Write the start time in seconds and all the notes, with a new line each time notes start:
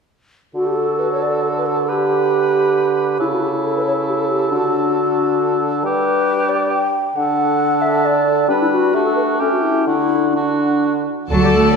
0.54 D3 F#4 A4
0.66 G4
0.76 A4
0.99 B4
1.12 C#5
1.22 D5
1.44 A4
1.57 B4
1.66 A4
1.88 G4 B4
3.19 C#3 E4 A4
3.32 F#4
3.43 G4
3.65 A4
3.77 B4
3.87 C#5
4.09 G4
4.20 A4
4.29 G4
4.51 D3 D4 F#4
5.84 G3 G4 B4
6.49 D5
6.73 G5
7.16 D3 D4 A4 F#5
7.82 E5
8.05 D5
8.48 G3 D4 B4
8.61 E4
8.72 F#4
8.94 A3 D4 F#4 G4
9.05 A4
9.16 B4
9.40 A3 C#4 G4 A4
9.52 F#4
9.62 E4
9.86 D3 D4 E4 F#4
10.33 D4 F#4
11.30 D2 D3 F#3 F#4 A4 D5 A5
11.42 G3 G4
11.54 A3 A4